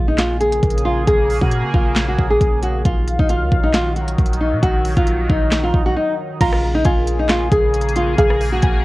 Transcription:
Already playing: A#1 C#3 A#3 G#4
0.08 D#4
0.18 F4, snare, clap, closed hi-hat
0.41 G#4, closed hi-hat
0.52 closed hi-hat
0.63 A#1, kick, closed hi-hat
0.70 closed hi-hat
0.78 closed hi-hat
0.85 F4
1.07 A#1 G#4, kick, closed hi-hat
1.30 open hi-hat
1.41 A#2 F#4, kick
1.51 closed hi-hat
1.64 C#3
1.74 A#1 F4, kick
1.96 snare, clap, closed hi-hat
2.08 F#4
2.18 A#1, kick
2.30 G#4
2.41 A#1, kick, closed hi-hat
2.62 F#4, closed hi-hat
2.85 A#1 D#3 F#3 F4 F5, kick, closed hi-hat
3.08 closed hi-hat
3.19 A#1 D#4, kick
3.29 F4, closed hi-hat
3.41 C#2
3.52 A#1, kick
3.63 D#4
3.74 F4, snare, clap, closed hi-hat
3.96 F#4, closed hi-hat
4.08 closed hi-hat
4.18 A#1, kick, closed hi-hat
4.26 closed hi-hat
4.33 closed hi-hat
4.41 D#4
4.52 A#2
4.63 A#1 D#4 F#4, kick, closed hi-hat
4.85 closed hi-hat, open hi-hat
4.97 A#1 F4, kick, closed hi-hat
5.07 closed hi-hat
5.30 A#1 D#4, kick
5.51 snare, clap, closed hi-hat
5.64 F4
5.74 A#1, kick
5.86 F#4
5.96 D#4
6.41 A#1 C#3 A#3 F4 G#4 A#5, kick, closed hi-hat, crash
6.52 cross-stick
6.75 D#4
6.85 A#1 F4 G#5, kick, closed hi-hat
7.07 closed hi-hat
7.19 D#4
7.29 F4, snare, clap, closed hi-hat
7.52 A#1 G#4, kick, closed hi-hat
7.74 closed hi-hat
7.81 closed hi-hat
7.89 closed hi-hat
7.96 F4, closed hi-hat
8.18 A#1 G#4 F5, kick, closed hi-hat
8.30 cross-stick
8.41 open hi-hat
8.52 F#4
8.62 A#1 G#5, kick, closed hi-hat

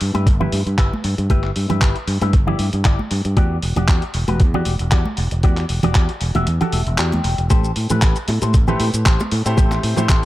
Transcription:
0.01 G2, open hi-hat
0.14 G2 E4 G4 B4, closed hi-hat, high conga
0.27 G1, kick, closed hi-hat
0.40 E4 G4 B4, low conga
0.52 G2, open hi-hat, high conga
0.66 G2, closed hi-hat
0.78 G1 E4 G4 B4, kick, clap, closed hi-hat
0.94 high conga
1.04 G2, muted clean electric guitar stroke, open hi-hat
1.18 G2, muted clean electric guitar stroke, closed hi-hat
1.30 G1 E4 G4 B4, kick, closed hi-hat, high conga
1.44 clap
1.56 G2, open hi-hat
1.69 G2 E4 G4 B4, closed hi-hat, high conga, low conga
1.82 G1, kick, clap, closed hi-hat
1.96 closed hi-hat
2.08 G2, open hi-hat
2.21 G2 E4 G4 B4, closed hi-hat, high conga
2.33 G1, kick, closed hi-hat
2.47 E4 G4 D5, low conga
2.59 G2, open hi-hat, high conga
2.73 G2, closed hi-hat
2.85 G1 E4 G4 D5, kick, clap, closed hi-hat
2.99 high conga
3.11 G2, muted clean electric guitar stroke, open hi-hat
3.25 G2, muted clean electric guitar stroke, closed hi-hat
3.37 E2 F#4 G4 D5, kick, closed hi-hat, high conga
3.62 E1, open hi-hat
3.76 E1 F#4 G4 D5, closed hi-hat, high conga, low conga
3.88 E2, kick, clap, closed hi-hat
4.02 closed hi-hat
4.14 E1, open hi-hat
4.28 E1 F#4 G4 B4, closed hi-hat, high conga
4.40 E2, kick, closed hi-hat
4.54 F#4 G4 D5, low conga
4.65 E1, open hi-hat, high conga
4.79 E1, closed hi-hat
4.91 E2 F#4 G4 D5, kick, clap, closed hi-hat
5.05 high conga
5.17 E1, muted clean electric guitar stroke, open hi-hat
5.31 E1, muted clean electric guitar stroke, closed hi-hat
5.43 E2 F#4 G4 D5, kick, closed hi-hat, high conga
5.57 clap, closed hi-hat
5.69 E1, open hi-hat
5.83 E1 F#4 G4 D5, closed hi-hat, high conga, low conga
5.95 E2, kick, clap, closed hi-hat
6.09 closed hi-hat
6.21 E1, open hi-hat
6.35 E1 F#4 G4 E5, closed hi-hat, high conga, low conga
6.47 E2, closed hi-hat
6.61 F#4 G4 A4, muted fingered electric bass stroke, closed hi-hat, low conga
6.72 E1 E5, open hi-hat, high conga
6.87 E1, closed hi-hat
6.98 E2 F#4 G4 D5 G5, clap, closed hi-hat
7.12 closed hi-hat, high conga
7.24 E1, muted clean electric guitar stroke, open hi-hat
7.38 E1, muted clean electric guitar stroke, closed hi-hat
7.50 A1 G4 A4 C5, kick, closed hi-hat, high conga, shaker
7.64 shaker
7.76 A2, open hi-hat
7.90 A2 G4 A4 B4, closed hi-hat, high bongo, high conga, low conga, shaker
8.02 A1, kick, clap, closed hi-hat, shaker
8.16 closed hi-hat, shaker
8.28 A2, open hi-hat, high bongo
8.42 A2 G4 A4 C5, closed hi-hat, high conga, shaker
8.54 A1, kick, closed hi-hat, shaker
8.68 A3 C4 E4 G4 A4 B4 C5, low conga, shaker
8.80 A2, open hi-hat, high bongo, high conga
8.94 A2, closed hi-hat, shaker
9.05 A1 G4 A4 C5, kick, clap, closed hi-hat, shaker
9.20 high bongo, high conga, shaker
9.31 A2, muted clean electric guitar stroke, open hi-hat
9.45 A2 A3 C4 E4 G4 C5, muted clean electric guitar stroke, closed hi-hat, shaker
9.57 A1 G4 A4 C5, kick, closed hi-hat, high conga, shaker
9.72 clap, high bongo, shaker
9.83 A2, open hi-hat
9.97 A2 A3 C4 E4 G4 A4 C5, closed hi-hat, high conga, low conga, shaker
10.09 A1, kick, clap, closed hi-hat, high bongo, shaker

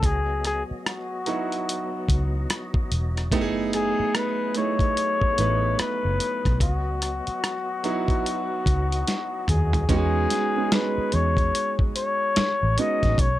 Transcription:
Already playing: F#3
0.02 C#2 B3 F#4 G#4 D#5, kick, closed hi-hat
0.45 G#4, cross-stick, closed hi-hat
0.71 muted fingered electric bass stroke
0.86 F#4, cross-stick, closed hi-hat
1.26 F#3 B3 D#4 E4 F#4, closed hi-hat
1.52 closed hi-hat
1.69 closed hi-hat
2.09 C#2, kick, closed hi-hat
2.50 cross-stick, closed hi-hat
2.74 kick
2.92 E1, closed hi-hat
3.17 cross-stick, closed hi-hat
3.32 F#1 A3 B3 D#4 E4 G4 G#4, kick, closed hi-hat
3.41 G#4
3.73 G#4, cross-stick, closed hi-hat
4.00 muted fingered electric bass stroke
4.15 B4, cross-stick, closed hi-hat
4.54 A3 B3 D#4 E4 G#4 C#5, closed hi-hat
4.79 kick, closed hi-hat
4.97 closed hi-hat
5.21 kick
5.38 A1 A3 B3 D#4 E4 B4, closed hi-hat
5.79 B4, cross-stick, closed hi-hat
6.05 F#1
6.20 closed hi-hat
6.45 B1, kick, cross-stick, closed hi-hat
6.60 C#2 F#4 D#5, kick, closed hi-hat
7.02 cross-stick, closed hi-hat
7.27 muted fingered electric bass stroke, closed hi-hat
7.44 cross-stick, closed hi-hat
7.83 F#3 B3 D#4 E4 F#4, closed hi-hat
8.08 kick, closed hi-hat
8.26 closed hi-hat
8.66 C#2, kick, closed hi-hat
8.92 closed hi-hat
9.07 snare, closed hi-hat
9.48 D#2 G#4, closed hi-hat, mid tom
9.73 closed hi-hat, floor tom
9.89 E2 G#3 B3 C#4 D#4 F#4 G#4, kick, closed hi-hat
10.30 snare, closed hi-hat
10.56 G#3 B3 C#4 D#4 G#4
10.72 B4, snare, closed hi-hat
10.98 muted fingered electric bass stroke
11.12 E2 C#5, closed hi-hat
11.37 kick, closed hi-hat
11.55 closed hi-hat
11.79 kick
11.96 C#5, closed hi-hat
12.36 muted fingered electric bass stroke, snare, closed hi-hat
12.63 A1
12.77 G#3 B3 C#4 D#4 F#4 D#5, closed hi-hat
13.03 A1, kick, snare, closed hi-hat
13.18 B1 C#5, kick, closed hi-hat

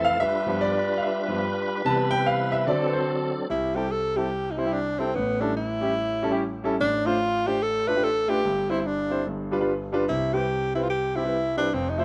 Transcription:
Already playing: F2 E3 A3 C4 E4 A4
0.05 F5
0.20 G3 D4 F4 G4 B4 E5
0.46 G2 F3 B3
0.61 D5
0.98 F5
1.03 E5
1.28 G2 F3 B3
1.85 C3 E3 G3 B3 E4 B4 A5
2.11 G5
2.26 F5
2.52 E5
2.66 D3 F#3 C4 D4 F#4 A4 D5
2.86 B4
2.93 C5
3.49 C2 C3 E4
3.75 G3 C4 E4 G4 A4
3.91 A4
4.16 G3 C4 E4 G4 A4
4.51 D#4
4.57 G3 C4 E4 C5
4.65 G3 C4 E4 G4
4.73 D4
4.99 G3 C4 E4 A4
5.15 A1 A2 B3
5.40 G3 C#4 D4 E4 A4
5.57 E4
5.80 G3 C#4 E4 G4
6.22 G3 C#4 E4 A4
6.30 G3 C#4 E4 G4
6.64 G3 C#4 E4 A4
6.81 A1 A2 D4
7.05 A3 D4 F4 C5
7.46 A3 D4 F4 G4 C5
7.62 A4
7.87 A3 D4 F4 A4 B4
7.95 A3 D4 F4 G4
8.04 A4
8.28 A3 D4 F4 G4 B4
8.45 G1 G2
8.69 G3 C4 E4 C5
8.80 E4
8.86 D4
9.10 G3 C4 E4 C5
9.26 G1 G2
9.51 G3 D4 F4 B4
9.59 G3 D4 F4 B4
9.92 G3 D4 F4 B4
10.09 C2 C3 E4
10.33 G3 C4 E4 G4 B4
10.74 G3 C4 E4 B4
10.83 F4
10.90 G4
11.16 G3 C4 E4 G4
11.23 G3 C4 E4 B4
11.57 G3 C4 D4 E4 B4
11.73 F1 F2 C4
11.90 D#4
11.98 A3 E4 F4 C5

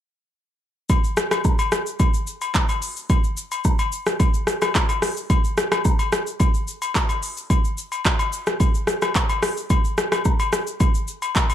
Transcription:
0.90 kick, high agogo, shaker
1.04 shaker
1.17 cross-stick, shaker
1.31 cross-stick, high agogo, shaker
1.44 kick, low woodblock, shaker
1.59 high agogo, shaker
1.72 cross-stick, shaker
1.86 shaker
2.00 kick, high agogo, shaker
2.14 shaker
2.27 shaker
2.41 high agogo, shaker
2.54 kick, clap, low woodblock, shaker
2.69 high agogo, shaker
2.82 open hi-hat, shaker
2.97 shaker
3.10 kick, high agogo, shaker
3.24 shaker
3.37 shaker
3.52 high agogo, shaker
3.64 kick, low woodblock, shaker
3.79 high agogo, shaker
3.92 shaker
4.06 cross-stick, shaker
4.20 kick, high agogo, shaker
4.34 shaker
4.47 cross-stick, shaker
4.62 cross-stick, high agogo, shaker
4.75 kick, clap, low woodblock, shaker
4.89 high agogo, shaker
5.02 cross-stick, open hi-hat, shaker
5.17 shaker
5.30 kick, high agogo, shaker
5.44 shaker
5.58 cross-stick, shaker
5.72 cross-stick, high agogo, shaker
5.85 kick, low woodblock, shaker
5.99 high agogo, shaker
6.12 cross-stick, shaker
6.27 shaker
6.40 kick, high agogo, shaker
6.54 shaker
6.68 shaker
6.82 high agogo, shaker
6.95 kick, clap, low woodblock, shaker
7.09 high agogo, shaker
7.23 open hi-hat, shaker
7.37 shaker
7.50 kick, high agogo, shaker
7.65 shaker
7.78 shaker
7.92 high agogo, shaker
8.05 kick, clap, low woodblock, shaker
8.19 high agogo, shaker
8.33 shaker
8.47 cross-stick, shaker
8.60 kick, high agogo, shaker
8.74 shaker
8.87 cross-stick, shaker
9.02 cross-stick, high agogo, shaker
9.15 kick, clap, low woodblock, shaker
9.29 high agogo, shaker
9.43 cross-stick, open hi-hat, shaker
9.57 shaker
9.70 kick, high agogo, shaker
9.85 shaker
9.98 cross-stick, shaker
10.12 cross-stick, high agogo, shaker
10.25 kick, low woodblock, shaker
10.40 high agogo, shaker
10.53 cross-stick, shaker
10.67 shaker
10.80 kick, high agogo, shaker
10.94 shaker
11.08 shaker
11.22 high agogo, shaker
11.35 kick, clap, low woodblock, shaker
11.50 high agogo, shaker

